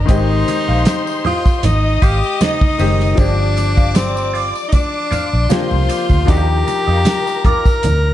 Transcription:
Already playing: tenor saxophone D#4
0.06 fingered electric bass G#1, grand piano D#3 G#3 C4, clean electric guitar G4, string section C5 C6, kick, closed hi-hat, tambourine
0.10 grand piano G4, clean electric guitar C5 D#5
0.48 muted clean electric guitar stroke, closed hi-hat, tambourine, muted conga
0.68 fingered electric bass A#1, clean electric guitar G4 C5 F5
0.85 muted clean electric guitar stroke, snare, closed hi-hat, tambourine, high conga
1.07 muted clean electric guitar stroke, tambourine
1.25 tenor saxophone F4, clean electric guitar G4 C5 D#5, open hi-hat, low conga
1.45 muted clean electric guitar stroke, kick, tambourine
1.63 fingered electric bass G#1, tenor saxophone D#4, string section D#5 D#6, muted clean electric guitar stroke, closed hi-hat, tambourine, muted conga, low conga
2.02 fingered electric bass G#1, clean electric guitar G4 C5 F5, tenor saxophone G4, kick, closed hi-hat, tambourine
2.23 muted clean electric guitar stroke, tambourine
2.41 tenor saxophone D#4, clean electric guitar G4 C5 D#5, snare, closed hi-hat, tambourine, high conga
2.61 muted clean electric guitar stroke, kick, high conga
2.78 fingered electric bass F#1, grand piano D#3 G#3 C4 G4, clean electric guitar G4 C5 D#5, open hi-hat, tambourine
3.00 snare, tambourine
3.15 fingered electric bass G1, grand piano F3 C4 D4, tenor saxophone D4, clean electric guitar F4 C5 D5, string section D5 D6, kick, closed hi-hat, tambourine
3.20 grand piano G4
3.56 muted clean electric guitar stroke, closed hi-hat, tambourine, muted conga
3.77 clean electric guitar F4 C5 F5, kick, tambourine
3.95 tenor saxophone C4, muted clean electric guitar stroke, snare, closed hi-hat, tambourine, high conga
4.16 muted clean electric guitar stroke, tambourine
4.33 clean electric guitar F4 C5 D5, open hi-hat
4.55 muted clean electric guitar stroke, tambourine
4.68 tenor saxophone D#4
4.72 tenor saxophone D4, muted clean electric guitar stroke, kick, closed hi-hat, tambourine, muted conga
5.11 clean electric guitar F4 C5 F5, muted fingered electric bass stroke, closed hi-hat, tambourine, low conga
5.31 fingered electric bass A#1, muted clean electric guitar stroke
5.49 grand piano F3 A#3 D4 G4, clean electric guitar F4 C5 D5, tenor saxophone F4, string section C5 C6, snare, closed hi-hat, tambourine, high conga
5.57 grand piano C4
5.71 fingered electric bass C2, muted clean electric guitar stroke, high conga
5.89 clean electric guitar F4 C5 D5, closed hi-hat, tambourine
6.09 fingered electric bass D2, kick, tambourine, high conga
6.25 fingered electric bass D#2, grand piano F3 D4 D#4, clean electric guitar F4 G4 D5, tenor saxophone G4, string section A#4 A#5, kick, closed hi-hat, tambourine
6.30 grand piano F#4
6.37 grand piano G4
6.67 muted clean electric guitar stroke, closed hi-hat, tambourine, muted conga
6.87 fingered electric bass F2, clean electric guitar F4 G4 D#5
7.05 muted clean electric guitar stroke, snare, closed hi-hat, tambourine, high conga
7.27 muted clean electric guitar stroke, tambourine
7.45 clean electric guitar F4 G4 D5, tenor saxophone A#4, kick, closed hi-hat, low conga
7.66 muted clean electric guitar stroke, kick, tambourine
7.83 fingered electric bass D2, muted clean electric guitar stroke, closed hi-hat, tambourine, muted conga, low conga

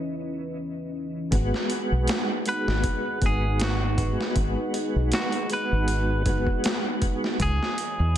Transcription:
Already playing: analog synth pad E3 C#4 B4 D#5
1.31 fingered electric bass G#1, tonewheel organ G#3 B3 F#4, analog synth pad D#4 G#4 B4 F#5, kick, closed hi-hat
1.54 snare
1.70 closed hi-hat
1.92 fingered electric bass B1
2.08 snare, closed hi-hat
2.46 tonewheel organ G#3 B3 F#4, clean electric guitar B4, closed hi-hat
2.68 fingered electric bass G#1, snare
2.84 kick, closed hi-hat
3.21 fingered electric bass G#1, tonewheel organ G#3 B3 F#4, kick, closed hi-hat
3.26 clean electric guitar G#4
3.60 snare, closed hi-hat
3.64 clean electric guitar F#4
3.98 kick, closed hi-hat
4.21 snare
4.36 fingered electric bass G#1, kick, closed hi-hat
4.74 closed hi-hat
4.96 fingered electric bass B1
5.12 clean electric guitar F#4, snare, closed hi-hat
5.32 closed hi-hat
5.50 tonewheel organ G#3 B3 F#4, clean electric guitar B4, closed hi-hat
5.72 fingered electric bass G#1
5.88 closed hi-hat
6.25 fingered electric bass F#1, tonewheel organ G#3 B3 F#4, kick, closed hi-hat
6.47 kick
6.64 snare, closed hi-hat
7.02 kick, closed hi-hat
7.24 snare
7.40 fingered electric bass C#2, analog synth pad E3 C#5 D#5 B5, clean electric guitar G#4, kick, closed hi-hat
7.63 snare
7.78 closed hi-hat
7.99 fingered electric bass E2

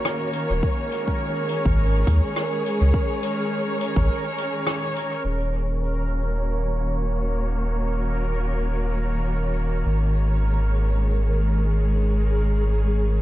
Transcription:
Already playing: string section D#3 A#3 C#4 F#4 C#5, synth texture A#4
0.05 cross-stick
0.33 closed hi-hat
0.50 sub bass D#1
0.63 kick
0.76 string section G#4
0.82 string section G#3
0.92 closed hi-hat
1.08 kick
1.49 closed hi-hat
1.65 sub bass G#1, kick
2.07 sub bass D#2, kick, closed hi-hat
2.36 cross-stick
2.66 closed hi-hat
2.81 sub bass C#2
2.94 kick
3.23 closed hi-hat
3.81 closed hi-hat
3.96 sub bass G#1, kick
4.38 closed hi-hat
4.67 cross-stick
4.96 closed hi-hat
5.24 sub bass D#1, string section D#3, synth texture A#4
5.38 string section A#3
5.92 string section F#4
9.86 sub bass G#1
9.96 string section G#3
10.60 string section G#4

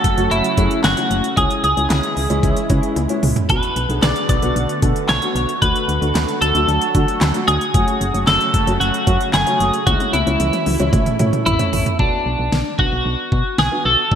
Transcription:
Already playing: analog synth pad C#3 F#3 A3 F#4, clean electric guitar A4
0.04 fm bass F#1, kick, closed hi-hat
0.17 fm bass F#1, grand piano A3 C#4 F#4, closed hi-hat
0.31 fm bass F#1, clean electric guitar E4, closed hi-hat
0.44 closed hi-hat
0.57 fm bass F#2, grand piano A3 C#4 G#4, kick, closed hi-hat
0.71 closed hi-hat
0.84 fm bass F#1, clean electric guitar F#4, snare, clap, closed hi-hat
0.97 grand piano A3 C#4 E4, closed hi-hat
1.11 fm bass F#1, closed hi-hat
1.24 closed hi-hat
1.37 fm bass C#2, analog synth pad E3 G#3 E4, grand piano G#3 C#4 E4, clean electric guitar G#4, kick, closed hi-hat
1.51 closed hi-hat
1.64 fm bass C#2, clean electric guitar G#4, closed hi-hat
1.77 fm bass C#2, grand piano G#3 C#4 E4, closed hi-hat
1.90 fm bass C#2, snare, clap, closed hi-hat
2.03 closed hi-hat
2.17 fm bass C#2, open hi-hat
2.30 fm bass C#2, grand piano G#3 C#4 E4, closed hi-hat
2.43 fm bass C#2, kick, closed hi-hat
2.57 closed hi-hat
2.70 fm bass C#3, grand piano G#3 C#4 E4, kick, closed hi-hat
2.83 closed hi-hat
2.96 fm bass C#2, closed hi-hat, high tom
3.09 grand piano G#3 C#4 E4, closed hi-hat
3.23 fm bass C#2, mid tom, open hi-hat
3.36 closed hi-hat, floor tom
3.49 fm bass B1, analog synth pad D3 A3 B3 F#4, grand piano B3 D4 F#4, clean electric guitar B4, kick, closed hi-hat
3.63 closed hi-hat
3.76 fm bass B1, closed hi-hat
3.89 fm bass B1, grand piano B3 D4 G#4, closed hi-hat
4.03 fm bass B1, clean electric guitar D5, snare, clap, closed hi-hat
4.16 closed hi-hat
4.29 fm bass B1, clean electric guitar D5, kick, closed hi-hat
4.42 fm bass B1, grand piano B3 D4 F#4, closed hi-hat
4.56 fm bass B1, closed hi-hat
4.69 closed hi-hat
4.82 fm bass B2, grand piano B3 D4 A4, kick, closed hi-hat
4.96 closed hi-hat
5.09 fm bass B1, clean electric guitar C#5, snare, clap, closed hi-hat
5.22 grand piano B3 D4 F#4, closed hi-hat
5.35 fm bass B1, closed hi-hat
5.49 closed hi-hat
5.62 fm bass D2, analog synth pad F#3, grand piano A3 D4 F#4, clean electric guitar B4, kick, closed hi-hat
5.76 closed hi-hat
5.88 fm bass D2, closed hi-hat
6.02 fm bass D2, grand piano A3 D4 F#4, closed hi-hat
6.15 fm bass D2, snare, clap, closed hi-hat
6.29 closed hi-hat
6.41 fm bass D2, clean electric guitar A4, closed hi-hat
6.55 fm bass D2, grand piano A3 D4 F#4, closed hi-hat
6.68 fm bass D2, closed hi-hat
6.81 closed hi-hat
6.95 fm bass D3, grand piano A3 D4 F#4, kick, closed hi-hat
7.08 closed hi-hat
7.21 fm bass D2, snare, clap, closed hi-hat
7.34 grand piano A3 D4 F#4, closed hi-hat
7.48 fm bass D2, clean electric guitar G#4, closed hi-hat
7.61 closed hi-hat
7.74 fm bass F#1, analog synth pad C#3 F#3 A3, grand piano A3 C#4 F#4, kick, closed hi-hat
7.88 closed hi-hat
8.01 fm bass F#1, closed hi-hat
8.14 fm bass F#1, grand piano A3 C#4 F#4, closed hi-hat
8.27 fm bass F#1, clean electric guitar A4, snare, clap, closed hi-hat
8.41 closed hi-hat
8.54 fm bass F#1, kick, closed hi-hat
8.67 fm bass F#1, grand piano A3 C#4 F#4, closed hi-hat
8.80 fm bass F#1, clean electric guitar F#4, closed hi-hat
8.94 closed hi-hat
9.07 fm bass F#2, grand piano A3 C#4 F#4, kick, closed hi-hat
9.21 closed hi-hat
9.33 fm bass F#1, clean electric guitar G#4, snare, clap, closed hi-hat
9.47 grand piano A3 C#4 F#4, closed hi-hat
9.60 fm bass F#1, closed hi-hat
9.74 closed hi-hat
9.87 fm bass C#2, analog synth pad E3 E4, grand piano G#3 C#4 E4, clean electric guitar F#4, kick, closed hi-hat, high tom
10.00 closed hi-hat, high tom
10.13 fm bass C#2, clean electric guitar E4, closed hi-hat, high tom
10.27 fm bass C#2, grand piano G#3 C#4 E4, closed hi-hat, high tom
10.40 fm bass C#2, closed hi-hat, mid tom
10.53 closed hi-hat, mid tom
10.66 fm bass C#2, open hi-hat, mid tom
10.80 fm bass C#2, grand piano G#3 C#4 E4, closed hi-hat, mid tom
10.93 fm bass A1, grand piano A3 C#4 E4, analog synth pad A3, kick, closed hi-hat, mid tom
11.06 closed hi-hat, mid tom
11.19 fm bass A2, grand piano A3 C#4 E4, closed hi-hat, mid tom
11.33 closed hi-hat, mid tom
11.46 fm bass A1, clean electric guitar E4, closed hi-hat, floor tom
11.59 grand piano A3 C#4 E4, closed hi-hat, floor tom
11.73 fm bass A1, floor tom, open hi-hat
11.86 closed hi-hat, floor tom
11.99 fm bass B1, grand piano B3 D4 F#4, clean electric guitar D4, kick
12.26 fm bass B1
12.39 fm bass B1
12.52 fm bass B1, snare
12.79 fm bass B1, grand piano B3 D4 F#4, clean electric guitar F#4, kick
12.92 fm bass B1
13.05 fm bass B1
13.32 fm bass B2, kick
13.58 fm bass B1, clean electric guitar G#4, snare
13.72 grand piano B3 D4 F#4
13.85 fm bass B1, clean electric guitar A4
14.12 fm bass D2, grand piano A3 D4 F#4, kick

